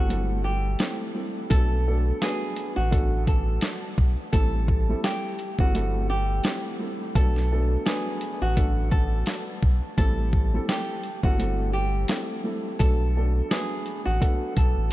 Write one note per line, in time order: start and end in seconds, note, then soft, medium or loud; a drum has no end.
0.00 0.76 G1 medium
0.00 0.42 F#4 medium
0.09 0.75 G3 medium
0.09 0.76 A3 medium
0.09 0.76 C4 medium
0.09 0.76 E4 medium
0.09 0.76 A4 loud
0.09 closed hi-hat medium
0.44 0.97 G4 medium
0.79 1.13 G3 medium
0.79 1.13 A3 medium
0.79 1.13 C4 medium
0.79 1.13 E4 medium
0.79 1.13 A4 medium
0.79 snare loud
0.79 closed hi-hat medium
1.14 1.48 G3 medium
1.14 1.48 A3 medium
1.14 1.48 C4 medium
1.14 1.48 E4 medium
1.14 1.48 A4 medium
1.50 2.12 B1 loud
1.50 1.83 F#3 medium
1.50 1.83 A3 medium
1.50 1.84 B3 medium
1.50 1.84 D4 medium
1.50 2.17 A4 loud
1.50 1.84 A4 loud
1.50 kick loud
1.50 closed hi-hat medium
1.86 2.19 F#3 medium
1.86 2.19 A3 medium
1.86 2.19 B3 medium
1.86 2.20 D4 medium
1.86 2.20 A4 loud
2.21 2.87 F#3 medium
2.21 2.87 A3 medium
2.21 2.87 B3 medium
2.21 2.87 D4 medium
2.21 2.74 G#4 medium
2.21 2.88 B4 loud
2.21 snare loud
2.21 closed hi-hat medium
2.56 closed hi-hat soft
2.76 3.58 A1 medium
2.76 3.24 F#4 medium
2.90 4.06 F#3 medium
2.90 4.06 A3 medium
2.90 4.06 B3 medium
2.90 4.06 D4 medium
2.90 4.06 A4 loud
2.90 kick medium
2.90 closed hi-hat medium
3.27 3.80 A4 medium
3.27 kick medium
3.27 closed hi-hat medium
3.61 snare loud
3.61 closed hi-hat medium
3.98 4.16 B1 medium
3.98 kick medium
4.33 4.94 A1 loud
4.33 4.84 G3 medium
4.33 4.84 A3 medium
4.33 4.84 C4 medium
4.33 4.84 E4 medium
4.33 4.99 A4 loud
4.33 4.85 A4 loud
4.33 kick loud
4.33 closed hi-hat medium
4.68 kick medium
4.89 5.35 G3 medium
4.89 5.36 A3 medium
4.89 5.36 C4 medium
4.89 5.36 E4 medium
4.89 5.36 A4 loud
5.04 5.56 G4 medium
5.04 snare loud
5.04 closed hi-hat medium
5.39 closed hi-hat soft
5.59 6.40 G1 medium
5.59 5.73 G3 medium
5.59 5.73 A3 medium
5.59 5.73 C4 medium
5.59 5.74 E4 medium
5.59 6.07 F#4 medium
5.59 5.74 A4 medium
5.59 kick medium
5.74 6.40 G3 medium
5.74 6.40 A3 medium
5.74 6.40 C4 medium
5.74 6.41 E4 medium
5.74 6.41 A4 loud
5.74 closed hi-hat medium
6.10 6.62 G4 medium
6.44 6.77 G3 medium
6.44 6.78 A3 medium
6.44 6.78 C4 medium
6.44 6.78 E4 medium
6.44 6.78 A4 medium
6.44 snare loud
6.44 closed hi-hat medium
6.79 7.12 G3 medium
6.79 7.13 A3 medium
6.79 7.13 C4 medium
6.79 7.13 E4 medium
6.79 7.13 A4 medium
7.15 7.77 B1 loud
7.15 7.48 F#3 medium
7.15 7.48 A3 medium
7.15 7.48 B3 medium
7.15 7.48 D4 medium
7.15 7.82 A4 loud
7.15 7.49 A4 loud
7.15 kick loud
7.15 closed hi-hat medium
7.36 snare soft
7.51 7.84 F#3 medium
7.51 7.84 A3 medium
7.51 7.84 B3 medium
7.51 7.84 D4 medium
7.51 7.84 A4 loud
7.85 8.52 F#3 medium
7.85 8.52 A3 medium
7.85 8.52 B3 medium
7.85 8.52 D4 medium
7.85 8.38 G#4 medium
7.85 8.52 B4 loud
7.85 snare loud
7.85 closed hi-hat medium
8.21 closed hi-hat soft
8.42 9.23 A1 medium
8.42 8.89 F#4 medium
8.55 9.71 F#3 medium
8.55 9.71 A3 medium
8.55 9.71 B3 medium
8.55 9.71 D4 medium
8.55 9.71 A4 loud
8.55 kick medium
8.55 closed hi-hat medium
8.91 9.44 A4 medium
8.91 kick medium
9.26 snare loud
9.26 closed hi-hat medium
9.63 9.80 B1 medium
9.63 kick medium
9.98 10.59 A1 loud
9.98 10.49 G3 loud
9.98 10.49 A3 medium
9.98 10.49 C4 medium
9.98 10.49 E4 medium
9.98 10.64 A4 loud
9.98 10.49 A4 loud
9.98 kick loud
9.98 closed hi-hat medium
10.33 kick medium
10.54 11.00 G3 medium
10.54 11.00 A3 medium
10.54 11.00 C4 medium
10.54 11.01 E4 medium
10.54 11.01 A4 loud
10.69 11.21 G4 medium
10.69 snare loud
10.69 closed hi-hat medium
11.04 closed hi-hat soft
11.23 12.05 G1 loud
11.23 11.37 G3 medium
11.23 11.38 A3 medium
11.23 11.38 C4 medium
11.23 11.38 E4 medium
11.23 11.71 F#4 medium
11.23 11.39 A4 medium
11.23 kick medium
11.39 12.05 G3 medium
11.39 12.05 A3 medium
11.39 12.05 C4 medium
11.39 12.05 E4 medium
11.39 12.05 A4 loud
11.39 closed hi-hat medium
11.73 12.26 G4 medium
12.08 12.42 G3 medium
12.08 12.42 A3 medium
12.08 12.42 C4 medium
12.08 12.43 E4 medium
12.08 12.43 A4 medium
12.08 snare loud
12.08 closed hi-hat medium
12.44 12.77 G3 medium
12.44 12.77 A3 medium
12.44 12.78 C4 medium
12.44 12.78 E4 medium
12.44 12.78 A4 medium
12.79 13.41 B1 loud
12.79 13.13 F#3 loud
12.79 13.13 A3 medium
12.79 13.13 B3 medium
12.79 13.13 D4 medium
12.79 13.46 A4 loud
12.79 13.13 A4 loud
12.79 kick loud
12.79 closed hi-hat medium
13.16 13.48 F#3 medium
13.16 13.49 A3 medium
13.16 13.49 B3 medium
13.16 13.49 D4 medium
13.16 13.49 A4 loud
13.50 14.16 F#3 medium
13.50 14.16 A3 medium
13.50 14.17 B3 medium
13.50 14.17 D4 medium
13.50 14.03 G#4 medium
13.50 14.17 B4 loud
13.50 snare loud
13.50 closed hi-hat medium
13.86 closed hi-hat soft
14.05 14.19 A1 medium
14.05 14.53 F#4 medium
14.19 14.93 F#3 medium
14.19 14.93 A3 medium
14.19 14.93 B3 medium
14.19 14.93 D4 medium
14.19 14.93 A4 loud
14.19 kick medium
14.19 closed hi-hat medium
14.57 14.75 B1 loud
14.57 14.93 A4 medium
14.57 kick medium
14.57 closed hi-hat medium
14.77 14.90 A1 medium